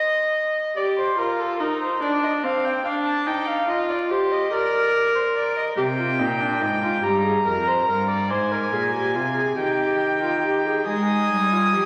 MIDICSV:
0, 0, Header, 1, 5, 480
1, 0, Start_track
1, 0, Key_signature, -3, "minor"
1, 0, Tempo, 837989
1, 436, Time_signature, 6, 3, 24, 8
1, 4273, Tempo, 857143
1, 6734, End_track
2, 0, Start_track
2, 0, Title_t, "Violin"
2, 0, Program_c, 0, 40
2, 6185, Note_on_c, 0, 87, 70
2, 6734, Note_off_c, 0, 87, 0
2, 6734, End_track
3, 0, Start_track
3, 0, Title_t, "Violin"
3, 0, Program_c, 1, 40
3, 0, Note_on_c, 1, 75, 85
3, 423, Note_off_c, 1, 75, 0
3, 437, Note_on_c, 1, 74, 62
3, 482, Note_off_c, 1, 74, 0
3, 557, Note_on_c, 1, 72, 64
3, 675, Note_on_c, 1, 70, 60
3, 684, Note_off_c, 1, 72, 0
3, 799, Note_on_c, 1, 69, 63
3, 808, Note_off_c, 1, 70, 0
3, 912, Note_off_c, 1, 69, 0
3, 916, Note_on_c, 1, 70, 66
3, 1033, Note_off_c, 1, 70, 0
3, 1037, Note_on_c, 1, 72, 63
3, 1154, Note_off_c, 1, 72, 0
3, 1157, Note_on_c, 1, 74, 66
3, 1203, Note_off_c, 1, 74, 0
3, 1278, Note_on_c, 1, 75, 63
3, 1323, Note_off_c, 1, 75, 0
3, 1396, Note_on_c, 1, 77, 70
3, 1515, Note_on_c, 1, 79, 65
3, 1523, Note_off_c, 1, 77, 0
3, 1628, Note_off_c, 1, 79, 0
3, 1632, Note_on_c, 1, 77, 69
3, 1677, Note_off_c, 1, 77, 0
3, 1750, Note_on_c, 1, 81, 70
3, 1871, Note_on_c, 1, 79, 73
3, 1880, Note_off_c, 1, 81, 0
3, 1988, Note_on_c, 1, 77, 69
3, 1997, Note_off_c, 1, 79, 0
3, 2112, Note_on_c, 1, 75, 69
3, 2120, Note_off_c, 1, 77, 0
3, 2227, Note_off_c, 1, 75, 0
3, 2230, Note_on_c, 1, 74, 65
3, 2276, Note_off_c, 1, 74, 0
3, 2350, Note_on_c, 1, 72, 69
3, 2470, Note_on_c, 1, 75, 70
3, 2479, Note_off_c, 1, 72, 0
3, 2592, Note_on_c, 1, 74, 75
3, 2601, Note_off_c, 1, 75, 0
3, 2945, Note_off_c, 1, 74, 0
3, 2949, Note_on_c, 1, 72, 67
3, 2995, Note_off_c, 1, 72, 0
3, 3069, Note_on_c, 1, 74, 70
3, 3185, Note_off_c, 1, 74, 0
3, 3188, Note_on_c, 1, 75, 66
3, 3234, Note_off_c, 1, 75, 0
3, 3307, Note_on_c, 1, 79, 82
3, 4029, Note_on_c, 1, 82, 81
3, 4038, Note_off_c, 1, 79, 0
3, 4744, Note_off_c, 1, 82, 0
3, 4748, Note_on_c, 1, 80, 76
3, 5447, Note_off_c, 1, 80, 0
3, 5459, Note_on_c, 1, 79, 76
3, 6170, Note_off_c, 1, 79, 0
3, 6187, Note_on_c, 1, 80, 68
3, 6734, Note_off_c, 1, 80, 0
3, 6734, End_track
4, 0, Start_track
4, 0, Title_t, "Viola"
4, 0, Program_c, 2, 41
4, 438, Note_on_c, 2, 67, 81
4, 661, Note_off_c, 2, 67, 0
4, 679, Note_on_c, 2, 65, 77
4, 917, Note_on_c, 2, 63, 80
4, 925, Note_off_c, 2, 65, 0
4, 1156, Note_off_c, 2, 63, 0
4, 1160, Note_on_c, 2, 62, 84
4, 1395, Note_on_c, 2, 60, 76
4, 1403, Note_off_c, 2, 62, 0
4, 1631, Note_off_c, 2, 60, 0
4, 1635, Note_on_c, 2, 62, 82
4, 1872, Note_on_c, 2, 63, 84
4, 1880, Note_off_c, 2, 62, 0
4, 2109, Note_off_c, 2, 63, 0
4, 2112, Note_on_c, 2, 65, 85
4, 2352, Note_on_c, 2, 67, 88
4, 2361, Note_off_c, 2, 65, 0
4, 2592, Note_off_c, 2, 67, 0
4, 2595, Note_on_c, 2, 70, 103
4, 3294, Note_off_c, 2, 70, 0
4, 3306, Note_on_c, 2, 67, 69
4, 3351, Note_off_c, 2, 67, 0
4, 3425, Note_on_c, 2, 65, 64
4, 3547, Note_on_c, 2, 63, 64
4, 3555, Note_off_c, 2, 65, 0
4, 3665, Note_on_c, 2, 62, 63
4, 3674, Note_off_c, 2, 63, 0
4, 3787, Note_on_c, 2, 63, 69
4, 3796, Note_off_c, 2, 62, 0
4, 3906, Note_off_c, 2, 63, 0
4, 3910, Note_on_c, 2, 65, 67
4, 4026, Note_off_c, 2, 65, 0
4, 4029, Note_on_c, 2, 67, 74
4, 4144, Note_off_c, 2, 67, 0
4, 4147, Note_on_c, 2, 68, 66
4, 4268, Note_off_c, 2, 68, 0
4, 4272, Note_on_c, 2, 70, 64
4, 4393, Note_on_c, 2, 72, 66
4, 4401, Note_off_c, 2, 70, 0
4, 4506, Note_off_c, 2, 72, 0
4, 4509, Note_on_c, 2, 70, 63
4, 4623, Note_off_c, 2, 70, 0
4, 4626, Note_on_c, 2, 74, 65
4, 4745, Note_on_c, 2, 72, 71
4, 4754, Note_off_c, 2, 74, 0
4, 4864, Note_on_c, 2, 70, 62
4, 4872, Note_off_c, 2, 72, 0
4, 4981, Note_on_c, 2, 68, 61
4, 4990, Note_off_c, 2, 70, 0
4, 5099, Note_off_c, 2, 68, 0
4, 5102, Note_on_c, 2, 67, 61
4, 5221, Note_on_c, 2, 65, 62
4, 5229, Note_off_c, 2, 67, 0
4, 5337, Note_off_c, 2, 65, 0
4, 5341, Note_on_c, 2, 68, 62
4, 5457, Note_off_c, 2, 68, 0
4, 5460, Note_on_c, 2, 67, 71
4, 5815, Note_off_c, 2, 67, 0
4, 5823, Note_on_c, 2, 65, 60
4, 5941, Note_off_c, 2, 65, 0
4, 5944, Note_on_c, 2, 67, 60
4, 6061, Note_off_c, 2, 67, 0
4, 6064, Note_on_c, 2, 68, 59
4, 6183, Note_off_c, 2, 68, 0
4, 6188, Note_on_c, 2, 63, 67
4, 6549, Note_on_c, 2, 65, 62
4, 6557, Note_off_c, 2, 63, 0
4, 6667, Note_off_c, 2, 65, 0
4, 6671, Note_on_c, 2, 67, 61
4, 6734, Note_off_c, 2, 67, 0
4, 6734, End_track
5, 0, Start_track
5, 0, Title_t, "Cello"
5, 0, Program_c, 3, 42
5, 3308, Note_on_c, 3, 48, 86
5, 3548, Note_on_c, 3, 46, 78
5, 3556, Note_off_c, 3, 48, 0
5, 3787, Note_on_c, 3, 44, 73
5, 3796, Note_off_c, 3, 46, 0
5, 4024, Note_off_c, 3, 44, 0
5, 4027, Note_on_c, 3, 43, 76
5, 4266, Note_off_c, 3, 43, 0
5, 4271, Note_on_c, 3, 41, 76
5, 4504, Note_off_c, 3, 41, 0
5, 4509, Note_on_c, 3, 43, 76
5, 4746, Note_on_c, 3, 44, 75
5, 4754, Note_off_c, 3, 43, 0
5, 4977, Note_off_c, 3, 44, 0
5, 4981, Note_on_c, 3, 46, 69
5, 5220, Note_on_c, 3, 48, 72
5, 5228, Note_off_c, 3, 46, 0
5, 5455, Note_off_c, 3, 48, 0
5, 5458, Note_on_c, 3, 51, 80
5, 6170, Note_off_c, 3, 51, 0
5, 6186, Note_on_c, 3, 56, 69
5, 6411, Note_off_c, 3, 56, 0
5, 6428, Note_on_c, 3, 55, 68
5, 6668, Note_on_c, 3, 53, 72
5, 6677, Note_off_c, 3, 55, 0
5, 6734, Note_off_c, 3, 53, 0
5, 6734, End_track
0, 0, End_of_file